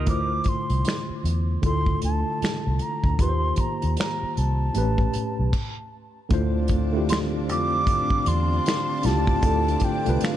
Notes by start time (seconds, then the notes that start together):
Already playing: A#4 D#5
0.06 D2 D3 A3 E4 F4 D6, kick, closed hi-hat
0.10 C5
0.44 kick, closed hi-hat
0.48 C6
0.70 C2, closed hi-hat
0.85 snare, closed hi-hat
0.89 finger snap
1.10 muted fingered electric bass stroke
1.24 E2, closed hi-hat
1.62 D2 D3 A3 E4 F4 C6, kick, closed hi-hat
1.66 A4
1.86 kick
2.02 D2 A5, closed hi-hat
2.42 finger snap, muted fingered electric bass stroke, snare, closed hi-hat
2.67 C2
2.79 A#5, closed hi-hat
3.04 D2, kick
3.18 D#2 D#3 A#3 F4 G4 C6, kick, closed hi-hat
3.22 B4
3.29 C5
3.56 kick, closed hi-hat
3.60 A#5
3.82 D#2, closed hi-hat
3.97 A#5, snare, closed hi-hat
4.01 finger snap
4.23 muted fingered electric bass stroke
4.37 C2 A5, closed hi-hat
4.73 A1 A2 A3 C4 G4, closed hi-hat
4.78 C#4 B4
4.98 kick
5.13 muted fingered electric bass stroke, closed hi-hat
5.39 B1
5.53 kick, crash
6.29 D2 D3 A3 C4 D4 E4 F4 A5 D6, kick, closed hi-hat
6.34 C5
6.68 kick, closed hi-hat
6.92 D3 A3 E4 F4
6.97 G4
7.09 C6, snare, closed hi-hat
7.13 finger snap
7.49 F2 D6, closed hi-hat
7.87 kick, closed hi-hat
8.10 kick
8.26 E2 C6, closed hi-hat
8.66 finger snap, snare, closed hi-hat
9.03 C#2 A3 D4 E4 F4 A5, snare, closed hi-hat
9.07 G4
9.27 kick
9.41 D2 D3 A3 E4 F4, kick, closed hi-hat
9.46 A4
9.68 closed hi-hat
9.80 kick, closed hi-hat
9.84 G5
10.05 C2 D3 A3 D4 F4, closed hi-hat
10.09 B4
10.21 F5, snare, closed hi-hat
10.25 finger snap